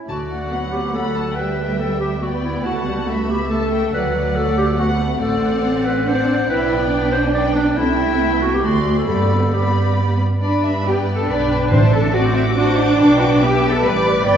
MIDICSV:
0, 0, Header, 1, 8, 480
1, 0, Start_track
1, 0, Key_signature, 2, "major"
1, 0, Tempo, 427046
1, 94, Time_signature, 3, 2, 24, 8
1, 5856, Key_signature, 1, "major"
1, 8253, Tempo, 438276
1, 12093, Tempo, 427046
1, 16052, End_track
2, 0, Start_track
2, 0, Title_t, "Violin section"
2, 0, Program_c, 0, 48
2, 90, Note_on_c, 0, 81, 31
2, 180, Note_off_c, 0, 81, 0
2, 338, Note_on_c, 0, 78, 31
2, 1049, Note_off_c, 0, 78, 0
2, 1066, Note_on_c, 0, 83, 38
2, 1305, Note_off_c, 0, 83, 0
2, 1313, Note_on_c, 0, 81, 34
2, 1545, Note_on_c, 0, 79, 29
2, 1549, Note_off_c, 0, 81, 0
2, 2494, Note_off_c, 0, 79, 0
2, 2507, Note_on_c, 0, 79, 38
2, 2976, Note_off_c, 0, 79, 0
2, 2986, Note_on_c, 0, 81, 34
2, 3456, Note_off_c, 0, 81, 0
2, 3473, Note_on_c, 0, 83, 36
2, 3938, Note_on_c, 0, 81, 41
2, 3946, Note_off_c, 0, 83, 0
2, 4174, Note_off_c, 0, 81, 0
2, 4180, Note_on_c, 0, 79, 42
2, 4415, Note_off_c, 0, 79, 0
2, 4417, Note_on_c, 0, 78, 38
2, 5355, Note_off_c, 0, 78, 0
2, 5378, Note_on_c, 0, 78, 49
2, 5838, Note_off_c, 0, 78, 0
2, 5851, Note_on_c, 0, 78, 49
2, 6768, Note_off_c, 0, 78, 0
2, 6812, Note_on_c, 0, 78, 53
2, 7282, Note_off_c, 0, 78, 0
2, 7289, Note_on_c, 0, 79, 57
2, 8234, Note_off_c, 0, 79, 0
2, 8247, Note_on_c, 0, 79, 55
2, 8710, Note_off_c, 0, 79, 0
2, 8723, Note_on_c, 0, 79, 51
2, 9635, Note_off_c, 0, 79, 0
2, 9676, Note_on_c, 0, 84, 47
2, 10152, Note_on_c, 0, 83, 39
2, 10162, Note_off_c, 0, 84, 0
2, 10628, Note_off_c, 0, 83, 0
2, 10641, Note_on_c, 0, 83, 46
2, 11375, Note_off_c, 0, 83, 0
2, 11617, Note_on_c, 0, 83, 43
2, 12060, Note_off_c, 0, 83, 0
2, 12096, Note_on_c, 0, 79, 47
2, 12566, Note_off_c, 0, 79, 0
2, 12579, Note_on_c, 0, 79, 52
2, 13054, Note_off_c, 0, 79, 0
2, 13067, Note_on_c, 0, 81, 46
2, 13545, Note_off_c, 0, 81, 0
2, 13546, Note_on_c, 0, 86, 58
2, 15448, Note_off_c, 0, 86, 0
2, 15461, Note_on_c, 0, 86, 65
2, 15926, Note_off_c, 0, 86, 0
2, 15934, Note_on_c, 0, 83, 55
2, 16052, Note_off_c, 0, 83, 0
2, 16052, End_track
3, 0, Start_track
3, 0, Title_t, "Violin section"
3, 0, Program_c, 1, 48
3, 91, Note_on_c, 1, 74, 30
3, 544, Note_off_c, 1, 74, 0
3, 583, Note_on_c, 1, 78, 32
3, 1054, Note_off_c, 1, 78, 0
3, 1068, Note_on_c, 1, 78, 32
3, 1528, Note_on_c, 1, 76, 33
3, 1537, Note_off_c, 1, 78, 0
3, 2494, Note_off_c, 1, 76, 0
3, 2506, Note_on_c, 1, 74, 35
3, 2983, Note_on_c, 1, 78, 35
3, 2985, Note_off_c, 1, 74, 0
3, 3464, Note_off_c, 1, 78, 0
3, 3471, Note_on_c, 1, 76, 38
3, 4424, Note_off_c, 1, 76, 0
3, 4426, Note_on_c, 1, 74, 42
3, 4646, Note_off_c, 1, 74, 0
3, 4659, Note_on_c, 1, 74, 43
3, 5362, Note_off_c, 1, 74, 0
3, 5372, Note_on_c, 1, 78, 43
3, 5851, Note_on_c, 1, 74, 52
3, 5854, Note_off_c, 1, 78, 0
3, 6768, Note_off_c, 1, 74, 0
3, 6819, Note_on_c, 1, 74, 50
3, 7274, Note_off_c, 1, 74, 0
3, 7287, Note_on_c, 1, 74, 51
3, 8233, Note_off_c, 1, 74, 0
3, 8255, Note_on_c, 1, 74, 49
3, 8719, Note_off_c, 1, 74, 0
3, 8720, Note_on_c, 1, 76, 52
3, 9634, Note_off_c, 1, 76, 0
3, 9678, Note_on_c, 1, 74, 44
3, 10151, Note_off_c, 1, 74, 0
3, 10164, Note_on_c, 1, 74, 39
3, 10644, Note_off_c, 1, 74, 0
3, 10655, Note_on_c, 1, 74, 42
3, 11381, Note_off_c, 1, 74, 0
3, 11612, Note_on_c, 1, 71, 47
3, 11613, Note_on_c, 1, 74, 42
3, 11837, Note_off_c, 1, 74, 0
3, 11847, Note_on_c, 1, 76, 44
3, 12089, Note_off_c, 1, 76, 0
3, 12098, Note_on_c, 1, 74, 49
3, 12531, Note_off_c, 1, 71, 0
3, 12570, Note_off_c, 1, 74, 0
3, 12583, Note_on_c, 1, 74, 56
3, 12810, Note_off_c, 1, 74, 0
3, 12823, Note_on_c, 1, 74, 52
3, 12913, Note_off_c, 1, 74, 0
3, 13071, Note_on_c, 1, 76, 46
3, 13536, Note_on_c, 1, 74, 47
3, 13537, Note_off_c, 1, 74, 0
3, 13537, Note_off_c, 1, 76, 0
3, 13537, Note_on_c, 1, 74, 59
3, 13771, Note_on_c, 1, 76, 55
3, 13774, Note_off_c, 1, 74, 0
3, 14013, Note_on_c, 1, 78, 56
3, 14016, Note_off_c, 1, 76, 0
3, 14019, Note_on_c, 1, 72, 55
3, 14487, Note_off_c, 1, 78, 0
3, 14490, Note_off_c, 1, 72, 0
3, 14498, Note_on_c, 1, 71, 60
3, 14501, Note_on_c, 1, 79, 51
3, 14979, Note_off_c, 1, 79, 0
3, 14986, Note_on_c, 1, 76, 63
3, 15459, Note_off_c, 1, 76, 0
3, 15462, Note_on_c, 1, 74, 68
3, 15908, Note_off_c, 1, 71, 0
3, 15917, Note_on_c, 1, 79, 61
3, 15921, Note_on_c, 1, 71, 61
3, 15936, Note_off_c, 1, 74, 0
3, 16052, Note_off_c, 1, 71, 0
3, 16052, Note_off_c, 1, 79, 0
3, 16052, End_track
4, 0, Start_track
4, 0, Title_t, "Clarinet"
4, 0, Program_c, 2, 71
4, 86, Note_on_c, 2, 66, 44
4, 810, Note_on_c, 2, 67, 43
4, 827, Note_off_c, 2, 66, 0
4, 1046, Note_off_c, 2, 67, 0
4, 1053, Note_on_c, 2, 69, 49
4, 1525, Note_on_c, 2, 71, 51
4, 1542, Note_off_c, 2, 69, 0
4, 2010, Note_off_c, 2, 71, 0
4, 2017, Note_on_c, 2, 69, 53
4, 2244, Note_off_c, 2, 69, 0
4, 2250, Note_on_c, 2, 67, 47
4, 2361, Note_off_c, 2, 67, 0
4, 2487, Note_on_c, 2, 66, 44
4, 2599, Note_off_c, 2, 66, 0
4, 2733, Note_on_c, 2, 64, 54
4, 2974, Note_off_c, 2, 64, 0
4, 2985, Note_on_c, 2, 66, 47
4, 3703, Note_on_c, 2, 67, 56
4, 3720, Note_off_c, 2, 66, 0
4, 3931, Note_off_c, 2, 67, 0
4, 3937, Note_on_c, 2, 69, 63
4, 4409, Note_off_c, 2, 69, 0
4, 4430, Note_on_c, 2, 71, 67
4, 4900, Note_on_c, 2, 69, 73
4, 4917, Note_off_c, 2, 71, 0
4, 5138, Note_off_c, 2, 69, 0
4, 5146, Note_on_c, 2, 67, 65
4, 5252, Note_off_c, 2, 67, 0
4, 5385, Note_on_c, 2, 66, 55
4, 5491, Note_off_c, 2, 66, 0
4, 5858, Note_on_c, 2, 69, 69
4, 6577, Note_on_c, 2, 71, 70
4, 6594, Note_off_c, 2, 69, 0
4, 6831, Note_on_c, 2, 72, 75
4, 6848, Note_off_c, 2, 71, 0
4, 7294, Note_off_c, 2, 72, 0
4, 7301, Note_on_c, 2, 71, 75
4, 7998, Note_off_c, 2, 71, 0
4, 8005, Note_on_c, 2, 72, 80
4, 8115, Note_off_c, 2, 72, 0
4, 8253, Note_on_c, 2, 74, 73
4, 8359, Note_off_c, 2, 74, 0
4, 8478, Note_on_c, 2, 62, 69
4, 8727, Note_on_c, 2, 64, 70
4, 8744, Note_off_c, 2, 62, 0
4, 9433, Note_on_c, 2, 66, 64
4, 9450, Note_off_c, 2, 64, 0
4, 9563, Note_on_c, 2, 67, 60
4, 9580, Note_off_c, 2, 66, 0
4, 9678, Note_on_c, 2, 66, 61
4, 9694, Note_off_c, 2, 67, 0
4, 10037, Note_off_c, 2, 66, 0
4, 10044, Note_on_c, 2, 69, 56
4, 10151, Note_off_c, 2, 69, 0
4, 10158, Note_on_c, 2, 69, 60
4, 10651, Note_on_c, 2, 67, 50
4, 10667, Note_off_c, 2, 69, 0
4, 11136, Note_off_c, 2, 67, 0
4, 16052, End_track
5, 0, Start_track
5, 0, Title_t, "Cello section"
5, 0, Program_c, 3, 48
5, 575, Note_on_c, 3, 59, 40
5, 1026, Note_off_c, 3, 59, 0
5, 1061, Note_on_c, 3, 57, 32
5, 1542, Note_on_c, 3, 55, 40
5, 1544, Note_off_c, 3, 57, 0
5, 2481, Note_off_c, 3, 55, 0
5, 2497, Note_on_c, 3, 59, 39
5, 3458, Note_on_c, 3, 57, 44
5, 3461, Note_off_c, 3, 59, 0
5, 4398, Note_off_c, 3, 57, 0
5, 4423, Note_on_c, 3, 54, 43
5, 4897, Note_on_c, 3, 57, 48
5, 4900, Note_off_c, 3, 54, 0
5, 5374, Note_on_c, 3, 59, 47
5, 5376, Note_off_c, 3, 57, 0
5, 5845, Note_off_c, 3, 59, 0
5, 5854, Note_on_c, 3, 57, 50
5, 6325, Note_off_c, 3, 57, 0
5, 6333, Note_on_c, 3, 60, 58
5, 6804, Note_off_c, 3, 60, 0
5, 6816, Note_on_c, 3, 62, 56
5, 7290, Note_on_c, 3, 64, 62
5, 7293, Note_off_c, 3, 62, 0
5, 7761, Note_off_c, 3, 64, 0
5, 7774, Note_on_c, 3, 62, 63
5, 8710, Note_off_c, 3, 62, 0
5, 8721, Note_on_c, 3, 60, 53
5, 9190, Note_off_c, 3, 60, 0
5, 9192, Note_on_c, 3, 59, 57
5, 9675, Note_on_c, 3, 57, 43
5, 9676, Note_off_c, 3, 59, 0
5, 10152, Note_off_c, 3, 57, 0
5, 10159, Note_on_c, 3, 59, 45
5, 11350, Note_off_c, 3, 59, 0
5, 11615, Note_on_c, 3, 62, 65
5, 12059, Note_off_c, 3, 62, 0
5, 12102, Note_on_c, 3, 67, 65
5, 12191, Note_off_c, 3, 67, 0
5, 12422, Note_on_c, 3, 69, 65
5, 12578, Note_off_c, 3, 69, 0
5, 12585, Note_on_c, 3, 71, 70
5, 13059, Note_on_c, 3, 72, 81
5, 13066, Note_off_c, 3, 71, 0
5, 13298, Note_on_c, 3, 69, 74
5, 13302, Note_off_c, 3, 72, 0
5, 13535, Note_off_c, 3, 69, 0
5, 13541, Note_on_c, 3, 66, 72
5, 14008, Note_off_c, 3, 66, 0
5, 14021, Note_on_c, 3, 66, 72
5, 14256, Note_off_c, 3, 66, 0
5, 14260, Note_on_c, 3, 62, 65
5, 14484, Note_off_c, 3, 62, 0
5, 14497, Note_on_c, 3, 62, 81
5, 14734, Note_off_c, 3, 62, 0
5, 14737, Note_on_c, 3, 66, 80
5, 14972, Note_on_c, 3, 67, 86
5, 14977, Note_off_c, 3, 66, 0
5, 15287, Note_off_c, 3, 67, 0
5, 15288, Note_on_c, 3, 69, 83
5, 15447, Note_on_c, 3, 71, 81
5, 15451, Note_off_c, 3, 69, 0
5, 15918, Note_on_c, 3, 74, 109
5, 15929, Note_off_c, 3, 71, 0
5, 16052, Note_off_c, 3, 74, 0
5, 16052, End_track
6, 0, Start_track
6, 0, Title_t, "Viola section"
6, 0, Program_c, 4, 48
6, 88, Note_on_c, 4, 57, 31
6, 542, Note_off_c, 4, 57, 0
6, 577, Note_on_c, 4, 54, 32
6, 1543, Note_off_c, 4, 54, 0
6, 1544, Note_on_c, 4, 55, 35
6, 1780, Note_off_c, 4, 55, 0
6, 1784, Note_on_c, 4, 57, 37
6, 2017, Note_on_c, 4, 59, 34
6, 2023, Note_off_c, 4, 57, 0
6, 2489, Note_off_c, 4, 59, 0
6, 2503, Note_on_c, 4, 59, 35
6, 2974, Note_off_c, 4, 59, 0
6, 2976, Note_on_c, 4, 57, 39
6, 3219, Note_on_c, 4, 55, 40
6, 3220, Note_off_c, 4, 57, 0
6, 3461, Note_off_c, 4, 55, 0
6, 3461, Note_on_c, 4, 57, 40
6, 3700, Note_on_c, 4, 59, 39
6, 3702, Note_off_c, 4, 57, 0
6, 3940, Note_off_c, 4, 59, 0
6, 3942, Note_on_c, 4, 57, 39
6, 4411, Note_off_c, 4, 57, 0
6, 4419, Note_on_c, 4, 54, 40
6, 4888, Note_off_c, 4, 54, 0
6, 4901, Note_on_c, 4, 54, 44
6, 5368, Note_off_c, 4, 54, 0
6, 5376, Note_on_c, 4, 57, 48
6, 5856, Note_off_c, 4, 57, 0
6, 5859, Note_on_c, 4, 60, 55
6, 6772, Note_off_c, 4, 60, 0
6, 6807, Note_on_c, 4, 60, 48
6, 7279, Note_off_c, 4, 60, 0
6, 7292, Note_on_c, 4, 59, 53
6, 8235, Note_off_c, 4, 59, 0
6, 8247, Note_on_c, 4, 59, 53
6, 8715, Note_off_c, 4, 59, 0
6, 8728, Note_on_c, 4, 57, 54
6, 9637, Note_off_c, 4, 57, 0
6, 9683, Note_on_c, 4, 57, 42
6, 10156, Note_off_c, 4, 57, 0
6, 10167, Note_on_c, 4, 55, 44
6, 10642, Note_off_c, 4, 55, 0
6, 10655, Note_on_c, 4, 55, 42
6, 11382, Note_off_c, 4, 55, 0
6, 12094, Note_on_c, 4, 59, 57
6, 12545, Note_off_c, 4, 59, 0
6, 12573, Note_on_c, 4, 62, 62
6, 13540, Note_off_c, 4, 62, 0
6, 13540, Note_on_c, 4, 60, 64
6, 14010, Note_off_c, 4, 60, 0
6, 14018, Note_on_c, 4, 62, 79
6, 14958, Note_off_c, 4, 62, 0
6, 14980, Note_on_c, 4, 59, 70
6, 15451, Note_on_c, 4, 55, 60
6, 15456, Note_off_c, 4, 59, 0
6, 15931, Note_off_c, 4, 55, 0
6, 15932, Note_on_c, 4, 59, 83
6, 16052, Note_off_c, 4, 59, 0
6, 16052, End_track
7, 0, Start_track
7, 0, Title_t, "Timpani"
7, 0, Program_c, 5, 47
7, 91, Note_on_c, 5, 50, 37
7, 774, Note_off_c, 5, 50, 0
7, 10166, Note_on_c, 5, 43, 55
7, 10853, Note_off_c, 5, 43, 0
7, 13064, Note_on_c, 5, 45, 66
7, 13737, Note_off_c, 5, 45, 0
7, 16052, End_track
8, 0, Start_track
8, 0, Title_t, "Double bass section"
8, 0, Program_c, 6, 48
8, 85, Note_on_c, 6, 38, 32
8, 2934, Note_off_c, 6, 38, 0
8, 2977, Note_on_c, 6, 37, 35
8, 4417, Note_off_c, 6, 37, 0
8, 4421, Note_on_c, 6, 38, 44
8, 5828, Note_off_c, 6, 38, 0
8, 5857, Note_on_c, 6, 33, 50
8, 7248, Note_off_c, 6, 33, 0
8, 7289, Note_on_c, 6, 35, 55
8, 8698, Note_off_c, 6, 35, 0
8, 8724, Note_on_c, 6, 36, 50
8, 9636, Note_off_c, 6, 36, 0
8, 9679, Note_on_c, 6, 38, 51
8, 10164, Note_off_c, 6, 38, 0
8, 10165, Note_on_c, 6, 43, 46
8, 11371, Note_off_c, 6, 43, 0
8, 11617, Note_on_c, 6, 43, 47
8, 12534, Note_off_c, 6, 43, 0
8, 12578, Note_on_c, 6, 35, 52
8, 13053, Note_off_c, 6, 35, 0
8, 13057, Note_on_c, 6, 33, 54
8, 14496, Note_on_c, 6, 35, 54
8, 14498, Note_off_c, 6, 33, 0
8, 15453, Note_off_c, 6, 35, 0
8, 15456, Note_on_c, 6, 33, 61
8, 15924, Note_off_c, 6, 33, 0
8, 15927, Note_on_c, 6, 31, 66
8, 16052, Note_off_c, 6, 31, 0
8, 16052, End_track
0, 0, End_of_file